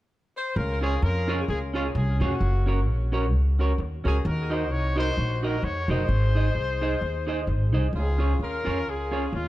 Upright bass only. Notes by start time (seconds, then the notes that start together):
0.56 C#2
1.02 F2
1.48 C#2
1.95 C2
2.20 F1
2.40 F#1
2.86 A#1
3.32 C#2
3.78 D#2
4.05 C#2
4.25 D#2
4.71 C2
5.17 A#1
5.63 F2
5.88 F#1
6.09 G#1
6.55 C2
7.01 D#2
7.47 G#1
7.73 C2
7.93 C#2
8.39 D#2
8.66 F2
8.85 C#2
9.33 D#2